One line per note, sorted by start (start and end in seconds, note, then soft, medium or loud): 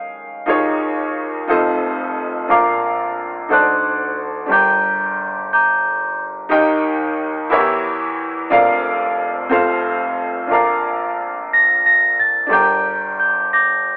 0.00 0.48 D#3 medium
0.00 0.49 G#3 medium
0.00 0.50 C#4 medium
0.00 0.50 D#5 medium
0.00 0.50 F5 medium
0.00 0.50 G5 medium
0.00 0.50 G#5 medium
0.46 1.44 D#2 medium
0.46 1.44 D#3 medium
0.46 1.46 D#4 medium
0.46 1.47 F4 medium
0.46 1.48 G#4 medium
0.46 1.48 A#4 medium
0.46 1.49 C#5 medium
1.47 2.45 F1 medium
1.47 2.45 F2 medium
1.47 2.48 D#4 medium
1.47 2.47 F4 medium
1.47 2.49 A4 medium
1.47 2.49 C5 medium
1.47 2.50 D#5 medium
2.48 3.45 A#1 medium
2.48 3.46 A#2 medium
2.48 3.49 D4 medium
2.48 3.49 F4 medium
2.48 3.49 A#4 medium
2.48 3.50 D5 medium
2.48 3.50 F5 medium
2.48 3.46 F5 medium
2.48 3.46 A#5 medium
2.48 3.13 D6 loud
3.49 4.46 D2 medium
3.49 4.46 D3 medium
3.49 4.49 D#4 medium
3.49 4.49 F#4 medium
3.49 4.50 A4 medium
3.49 4.50 C5 medium
3.49 4.50 D5 medium
3.53 4.47 A5 medium
3.53 4.47 C6 medium
3.53 4.14 F#6 loud
4.46 6.46 G1 medium
4.46 6.46 G2 medium
4.46 6.44 D4 medium
4.46 6.45 G4 medium
4.46 6.46 A#4 medium
4.51 6.47 D5 medium
4.51 6.47 G5 medium
4.51 5.47 A#5 medium
4.51 5.47 D6 medium
4.51 5.52 G6 loud
5.53 6.48 A#5 medium
5.53 6.48 D6 medium
5.53 6.22 G6 loud
6.49 7.47 D#2 medium
6.49 7.47 D#3 medium
6.49 7.50 D#4 medium
6.49 7.50 G4 medium
6.49 7.50 A#4 medium
6.49 7.51 D#5 medium
6.49 7.51 G5 medium
7.50 8.47 E2 medium
7.50 8.47 E3 medium
7.50 8.50 E4 medium
7.50 7.57 F#4 medium
7.50 8.50 A#4 medium
7.50 8.51 C#5 medium
7.50 8.52 E5 medium
7.57 8.54 G4 medium
8.50 9.47 F1 medium
8.50 9.47 F2 medium
8.50 9.50 D4 medium
8.50 9.49 F4 medium
8.50 9.51 A#4 medium
8.50 9.51 D5 medium
8.50 9.51 F5 medium
9.49 10.47 F1 medium
9.49 10.47 F2 medium
9.49 10.50 C4 medium
9.49 10.47 F4 medium
9.49 10.51 A4 medium
9.49 10.51 C5 medium
9.49 10.52 F5 medium
10.47 12.47 A#1 medium
10.47 12.47 A#2 medium
10.47 12.45 D4 medium
10.47 12.46 F4 medium
10.47 12.47 A#4 medium
10.52 12.47 D5 medium
10.52 12.48 F5 medium
10.52 11.48 A#5 medium
10.52 11.48 D6 medium
10.52 11.48 F6 medium
11.53 11.85 A#6 loud
11.86 12.16 A#6 medium
12.19 12.53 A6 medium
12.47 13.97 G1 medium
12.47 13.97 G2 medium
12.47 13.97 D4 medium
12.47 13.97 G4 medium
12.47 12.56 A4 medium
12.51 13.97 D5 medium
12.51 13.97 G5 medium
12.51 13.48 A#5 medium
12.51 13.48 D6 medium
12.51 13.18 G6 medium
12.56 13.97 A#4 medium
13.20 13.49 G6 medium
13.53 13.97 D6 medium
13.53 13.97 G6 medium
13.53 13.97 A#6 medium